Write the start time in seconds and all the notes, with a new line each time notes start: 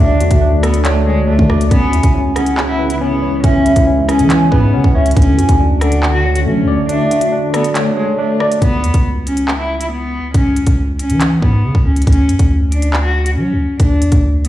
Already playing: D3 A3 F#4 A4 C#5 D5
0.00 D2 D4 E5
0.20 E2 F#4, closed hi-hat
0.31 D2, kick, closed hi-hat
0.42 D4
0.63 B3 A4 D5, cross-stick, closed hi-hat
0.74 closed hi-hat
0.85 A3 D4 C#5, clap, closed hi-hat
1.06 G#3 C#5
1.17 C#2
1.28 D2 A3 D4
1.39 D3, kick
1.50 D2 D5, cross-stick
1.61 closed hi-hat
1.71 C#2 C#3 G#3 B3 C#4 E4 G#5, kick, closed hi-hat
1.93 E2 E4, closed hi-hat
2.03 C#2, kick, closed hi-hat
2.14 C#4
2.36 C#4 G#4 F#5, cross-stick, closed hi-hat
2.46 closed hi-hat
2.57 C#4, clap
2.68 E4
2.79 B4
2.90 E4, closed hi-hat
3.01 B3 C#4
3.22 C#5
3.43 C#2 C#4 E5, kick, closed hi-hat
3.65 E4, closed hi-hat
3.76 C#2, kick, closed hi-hat
3.87 C#4
4.08 C#4 G#4 G#5, cross-stick, closed hi-hat
4.19 E3, closed hi-hat
4.30 C#4, clap, closed hi-hat
4.52 G#2 B3 B4, kick
4.73 C#3 C#4 F#5
4.84 C#2, kick
4.95 C#2 C#4 C#5 E5
5.06 closed hi-hat
5.11 closed hi-hat
5.16 D2 D3 A3 C#4 F#4 G#5, kick, closed hi-hat
5.22 closed hi-hat
5.38 F#2 F#4, closed hi-hat
5.49 D2, kick, closed hi-hat
5.60 D4
5.81 D4 A4 F#5, cross-stick, closed hi-hat
5.92 closed hi-hat
6.03 D3, clap
6.13 F#4
6.25 C#5
6.35 F#4, closed hi-hat
6.45 F#3 A3 C#4
6.62 D2
6.68 D5
6.89 D4 E5, closed hi-hat
7.11 F#4, closed hi-hat
7.21 closed hi-hat
7.32 D4
7.54 B3 A4 D5, cross-stick, closed hi-hat
7.64 closed hi-hat
7.75 A3 D4 C#5, clap, closed hi-hat
7.97 G#3 C#5
8.19 A3 D4
8.40 D5, cross-stick
8.52 closed hi-hat
8.62 C#2 B3, kick, closed hi-hat
8.83 E2, closed hi-hat
8.94 C#2, kick, closed hi-hat
9.26 C#4, closed hi-hat
9.37 closed hi-hat
9.48 clap
9.59 E4
9.81 E4, closed hi-hat
9.92 B3
10.34 C#2 C#4, kick, closed hi-hat
10.56 closed hi-hat
10.67 C#2, kick, closed hi-hat
10.99 C#4, closed hi-hat
11.10 E3, closed hi-hat
11.21 clap, closed hi-hat
11.42 G#2 B3, kick
11.64 C#3
11.75 C#2, kick
11.86 C#2 C#4
11.96 closed hi-hat
12.02 closed hi-hat
12.07 D2 C#4, kick, closed hi-hat
12.13 closed hi-hat
12.29 F#2, closed hi-hat
12.39 D2, kick, closed hi-hat
12.72 D4, closed hi-hat
12.82 closed hi-hat
12.93 clap
13.04 F#4
13.26 F#4, closed hi-hat
13.36 F#3 C#4
13.53 D2
13.80 D2 D4, kick, closed hi-hat
14.01 E2, closed hi-hat
14.12 D2, kick, closed hi-hat
14.45 B3, closed hi-hat